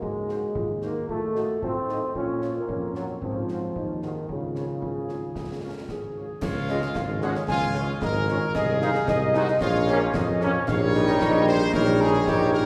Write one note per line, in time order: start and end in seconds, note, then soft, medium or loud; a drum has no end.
0.00 0.47 G#2 medium
0.00 0.77 G#3 medium
0.00 0.55 F#4 medium
0.00 concert bass drum medium
0.29 0.39 D#4 soft
0.29 0.39 F#4 soft
0.29 0.39 A#4 soft
0.29 0.38 C5 soft
0.29 0.39 C5 soft
0.29 snare soft
0.55 1.00 D#2 medium
0.55 0.68 F4 medium
0.55 concert bass drum medium
0.82 1.09 A#3 medium
0.82 0.94 D#4 soft
0.82 0.92 D#4 soft
0.82 0.91 F#4 soft
0.82 0.92 F#4 soft
0.82 0.92 A#4 soft
0.82 0.92 C5 soft
0.82 snare soft
1.08 1.54 A2 medium
1.08 1.59 A3 medium
1.08 1.20 F4 medium
1.08 concert bass drum medium
1.35 1.45 D#4 soft
1.35 1.45 F4 soft
1.35 1.60 F#4 medium
1.35 1.46 A4 soft
1.35 1.45 C5 medium
1.35 1.45 D#5 soft
1.35 snare soft
1.62 2.07 A2 medium
1.62 2.13 C4 medium
1.62 1.74 F4 medium
1.62 concert bass drum medium
1.88 2.00 D#4 medium
1.88 1.99 D#4 soft
1.88 1.98 F4 medium
1.88 1.99 F4 soft
1.88 1.98 A4 soft
1.88 1.98 C5 medium
1.88 1.98 D#5 medium
1.88 snare soft
2.15 2.60 A#2 medium
2.15 2.53 C#4 medium
2.15 2.65 F4 medium
2.15 concert bass drum medium
2.41 2.52 C#4 soft
2.41 2.52 F4 soft
2.41 2.51 C#5 soft
2.41 snare soft
2.57 2.96 A#3 medium
2.68 3.14 F2 medium
2.68 3.18 C#4 medium
2.68 concert bass drum medium
2.95 3.07 F#3 medium
2.95 3.05 C#4 soft
2.95 3.05 F4 soft
2.95 3.06 F4 soft
2.95 3.05 C#5 soft
2.95 snare soft
3.22 3.67 G#2 medium
3.22 3.99 F3 medium
3.22 3.72 C4 medium
3.22 concert bass drum medium
3.49 3.59 D#4 soft
3.49 3.58 F#4 soft
3.49 3.59 F#4 soft
3.49 3.58 G#4 soft
3.49 3.58 C5 medium
3.49 3.59 C5 soft
3.49 snare soft
3.76 4.20 D#2 medium
3.76 4.31 D#4 medium
3.76 concert bass drum medium
4.01 4.27 D#3 medium
4.01 4.12 D#4 soft
4.01 4.11 F#4 soft
4.01 4.12 F#4 soft
4.01 4.12 G#4 soft
4.01 4.11 C5 soft
4.01 4.12 C5 soft
4.01 snare soft
4.29 4.73 C#2 soft
4.29 6.12 C#3 medium
4.29 6.16 F4 soft
4.29 concert bass drum medium
4.55 4.65 C#4 soft
4.55 4.65 F4 soft
4.55 4.65 G#4 soft
4.55 4.65 C#5 soft
4.55 snare soft
4.82 5.27 G#1 soft
4.82 5.58 G#4 medium
4.82 concert bass drum medium
5.09 5.19 C#4 soft
5.09 5.19 F4 soft
5.09 5.19 G#4 soft
5.09 5.19 C#5 soft
5.09 snare soft
5.35 5.76 C#2 soft
5.35 concert bass drum medium
5.35 snare soft
5.63 5.73 C#4 soft
5.63 5.73 F4 soft
5.63 5.73 G#4 soft
5.63 5.89 A#4 soft
5.63 5.72 C#5 soft
5.89 6.33 G#1 medium
5.89 6.39 G#4 medium
5.89 concert bass drum medium
5.89 snare soft
6.16 6.26 C#4 soft
6.16 6.26 F4 soft
6.16 6.25 G#4 soft
6.16 6.25 C#5 soft
6.42 6.87 C#2 medium
6.42 7.18 F4 loud
6.42 6.67 C#5 medium
6.42 concert bass drum medium
6.42 snare medium
6.42 crash medium
6.69 6.78 G#3 medium
6.69 6.79 G#3 medium
6.69 6.78 C#4 medium
6.69 6.79 C#4 medium
6.69 6.79 F4 medium
6.69 6.81 D#5 medium
6.69 snare medium
6.82 snare medium
6.95 7.40 G#1 medium
6.95 7.07 F5 medium
6.95 concert bass drum medium
6.95 snare medium
7.22 7.32 G#3 medium
7.22 7.32 G#3 loud
7.22 7.32 C#4 medium
7.22 7.32 F4 medium
7.22 7.34 F#4 loud
7.22 7.34 C#5 medium
7.22 snare medium
7.35 snare medium
7.48 7.93 C#2 medium
7.48 7.98 F4 loud
7.48 7.73 G#5 loud
7.48 concert bass drum medium
7.48 snare medium
7.74 7.85 G#3 medium
7.74 7.84 C#4 medium
7.74 7.85 C#4 medium
7.74 7.85 F4 medium
7.74 8.01 F5 medium
7.74 snare medium
8.01 8.46 G#1 loud
8.01 8.52 A#4 loud
8.01 8.13 D#5 medium
8.01 concert bass drum medium
8.01 snare medium
8.28 8.38 G#3 medium
8.28 8.39 G#3 medium
8.28 8.38 C#4 loud
8.28 8.39 C#4 medium
8.28 8.39 F4 medium
8.28 8.40 C#5 medium
8.28 snare medium
8.55 8.99 C2 loud
8.55 9.35 G#4 loud
8.55 8.80 D#5 loud
8.55 concert bass drum medium
8.55 snare medium
8.55 crash soft
8.81 8.91 D#3 medium
8.81 8.91 G#3 medium
8.81 8.91 D#4 medium
8.81 8.91 D#4 loud
8.81 9.06 F5 medium
8.81 snare medium
8.95 snare medium
9.08 9.53 C2 loud
9.08 9.58 D#5 loud
9.08 concert bass drum medium
9.08 snare medium
9.34 9.44 D#3 medium
9.34 9.44 G#3 loud
9.34 9.45 G#3 medium
9.34 9.44 D#4 loud
9.34 9.44 D#4 medium
9.34 9.47 F#4 loud
9.34 snare medium
9.48 snare medium
9.61 10.05 A#1 loud
9.61 10.37 F4 loud
9.61 10.15 C#5 loud
9.61 concert bass drum medium
9.61 snare medium
9.87 9.98 F3 medium
9.87 9.98 A#3 medium
9.87 9.99 A#3 loud
9.87 9.98 C#4 medium
9.87 9.98 C#4 loud
9.87 snare medium
10.14 10.58 F2 loud
10.14 10.41 D#5 loud
10.14 concert bass drum medium
10.14 snare medium
10.41 10.51 F3 medium
10.41 10.51 A#3 medium
10.41 10.51 A#3 loud
10.41 10.51 C#4 medium
10.41 10.51 C#4 loud
10.41 10.67 C#5 loud
10.41 snare medium
10.67 11.14 A#1 loud
10.67 11.70 D#3 loud
10.67 11.70 G3 loud
10.67 11.71 G3 loud
10.67 11.70 D#4 loud
10.67 11.71 D#4 loud
10.67 11.43 C#5 loud
10.67 10.79 F5 loud
10.67 concert bass drum medium
10.67 snare medium
10.67 crash soft
10.94 11.70 D#5 medium
10.94 snare medium
11.08 snare medium
11.21 11.68 A#1 loud
11.21 concert bass drum medium
11.21 snare medium
11.47 11.72 C5 loud
11.47 snare medium
11.61 snare medium
11.73 12.21 A#1 loud
11.73 12.24 D#3 medium
11.73 12.23 G3 medium
11.73 12.24 G3 loud
11.73 12.23 D#4 loud
11.73 12.24 D#4 loud
11.73 11.98 A#4 loud
11.73 12.66 C#5 loud
11.73 concert bass drum medium
11.73 snare medium
12.00 12.27 G#4 loud
12.00 snare medium
12.27 12.66 A#1 loud
12.27 12.66 D#3 loud
12.27 12.66 G3 loud
12.27 12.66 G3 medium
12.27 12.66 D#4 medium
12.27 12.53 G4 loud
12.27 concert bass drum medium
12.27 snare medium
12.53 12.66 A#4 loud
12.53 snare medium